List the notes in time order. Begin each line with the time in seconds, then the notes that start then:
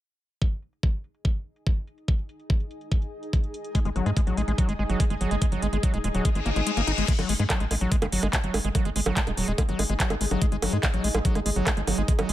0.42 D#4, kick
0.47 G#4
0.62 closed hi-hat
0.73 closed hi-hat
0.82 D#5, kick
1.04 closed hi-hat
1.15 closed hi-hat
1.25 kick
1.56 closed hi-hat
1.67 kick, closed hi-hat
1.87 closed hi-hat
1.98 closed hi-hat
2.08 kick, closed hi-hat
2.19 closed hi-hat
2.29 closed hi-hat
2.40 closed hi-hat
2.50 kick, closed hi-hat
2.60 closed hi-hat
2.71 closed hi-hat
2.81 closed hi-hat
2.92 kick, closed hi-hat
3.02 closed hi-hat
3.23 closed hi-hat
3.33 kick, closed hi-hat
3.44 closed hi-hat
3.54 closed hi-hat
3.64 closed hi-hat
3.75 G#3, kick, closed hi-hat
3.85 G#1 G#3, closed hi-hat
3.96 G#1 F#3, closed hi-hat
4.06 G#2 G#3, closed hi-hat
4.17 G#3, kick, closed hi-hat
4.27 A#1 F#3, closed hi-hat
4.37 A#1 G#3, closed hi-hat
4.48 A#1 G#3, closed hi-hat
4.58 F#3, kick, closed hi-hat
4.69 G#1 G#3, closed hi-hat
4.79 G#1 G#3
4.89 G#1 F#3, closed hi-hat
5.00 G#3, kick, closed hi-hat
5.10 G#1 G#3, closed hi-hat
5.21 G#1 F#3, closed hi-hat
5.31 G#1 G#3, closed hi-hat
5.42 G#3, kick, closed hi-hat
5.52 G#1 F#3, closed hi-hat
5.62 G#1 G#3, closed hi-hat
5.73 G#1 G#3, closed hi-hat
5.83 F#3, kick, closed hi-hat
5.94 D#1 G#3, closed hi-hat
6.04 D#1 G#3, closed hi-hat
6.15 D#1 F#3, closed hi-hat
6.25 G#3, kick, closed hi-hat, reverse cymbal
6.35 G#1 G#3, closed hi-hat
6.46 G#1 A#3, closed hi-hat
6.56 G#1 G#3, closed hi-hat
6.67 G#3, closed hi-hat
6.77 G#1 A#3, closed hi-hat
6.87 G#1 D#4, closed hi-hat
6.98 G#1 G#3, closed hi-hat
7.08 G#3, kick, closed hi-hat, crash
7.19 G#1 F#3, closed hi-hat, high bongo
7.29 G#1 G#3, open hi-hat
7.40 G#2 G#3, closed hi-hat
7.50 F#3, kick, clap, closed hi-hat, high bongo
7.60 A#1 G#3, closed hi-hat
7.71 A#1 G#3, open hi-hat, high bongo
7.81 A#1 F#3, closed hi-hat
7.92 G#3, kick, closed hi-hat
8.02 G#1 G#3, closed hi-hat, high bongo
8.12 G#1 F#3, open hi-hat
8.23 G#1 G#3, closed hi-hat, high bongo
8.33 G#3, kick, clap, closed hi-hat
8.44 G#1 F#3, closed hi-hat
8.54 G#1 G#3, open hi-hat, high bongo
8.64 G#1 G#3, closed hi-hat
8.75 F#3, kick, closed hi-hat, high bongo
8.85 G#1 G#3, closed hi-hat
8.96 G#1 G#3, open hi-hat
9.06 G#1 F#3, closed hi-hat, high bongo
9.17 G#3, kick, clap, closed hi-hat
9.27 D#1 G#3, closed hi-hat, high bongo
9.37 D#1 F#3, open hi-hat
9.48 D#1 G#3, closed hi-hat
9.58 G#3, kick, closed hi-hat, high bongo
9.69 G#1 F#3, closed hi-hat
9.79 G#1 G#3, open hi-hat, high bongo
9.89 G#1 G#3, closed hi-hat
10.00 F#3, kick, clap, closed hi-hat
10.10 G#1 G#3, closed hi-hat, high bongo
10.21 G#1 G#3, open hi-hat
10.31 G#1 F#3, high bongo
10.42 G#3, kick, closed hi-hat
10.52 G#1 G#3, closed hi-hat
10.62 G#1 F#3, open hi-hat, high bongo
10.73 G#2 G#3, closed hi-hat
10.83 G#3, kick, clap, closed hi-hat, high bongo
10.94 A#1 F#3, closed hi-hat
11.04 A#1 G#3, open hi-hat
11.14 A#1 G#3, closed hi-hat, high bongo
11.25 F#3, kick, closed hi-hat
11.35 G#1 G#3, closed hi-hat, high bongo
11.46 G#1 G#3, open hi-hat
11.56 G#1 F#3, closed hi-hat
11.67 G#3, kick, clap, closed hi-hat, high bongo
11.77 G#1 G#3, closed hi-hat
11.87 G#1 F#3, open hi-hat, high bongo
11.98 G#1 G#3, closed hi-hat
12.08 G#3, kick, closed hi-hat
12.19 G#1 F#3, closed hi-hat, high bongo
12.29 G#1 G#3, open hi-hat